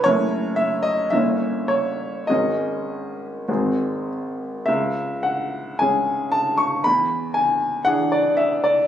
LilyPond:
<<
  \new Staff \with { instrumentName = "Upright piano" } { \time 4/4 \key cis \minor \tempo 4 = 54 cis''8 e''16 dis''16 e''8 des''8 dis''4. r8 | e''8 fis''8 gis''8 a''16 cis'''16 b''8 gis''8 fis''16 d''16 e''16 d''16 | }
  \new Staff \with { instrumentName = "Upright piano" } { \time 4/4 \key cis \minor <fis,, a cis' e'>4 <g,, bes des' e'>4 <gis,, gis cis' gis'>4 <gis,, gis bis gis'>4 | cis,4 <gis cis' gis'>4 e,4 <e d' gis'>4 | }
>>